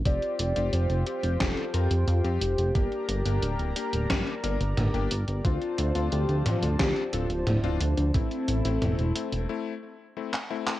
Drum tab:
HH |xxxxxxxxxxxxxxxx|xxxxxxxxxxxxxxxx|xxxxxxxxxxxxxxxx|xxxxxxxx--------|
CP |----------------|----------------|----------------|-------------x-x|
SD |--------o-------|--------o-------|--------o-------|----------------|
T2 |----------------|------------o---|------o-----o---|----o-----------|
BD |o-------o-------|o-------o-------|o-------o-------|o---------------|